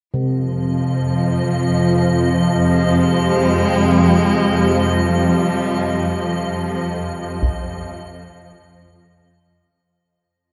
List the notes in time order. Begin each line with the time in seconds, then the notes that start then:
0.12 F2 C3 F3 D#5
1.33 C4
1.95 G4
2.60 G#3
5.00 G3
6.20 F3
7.42 taiko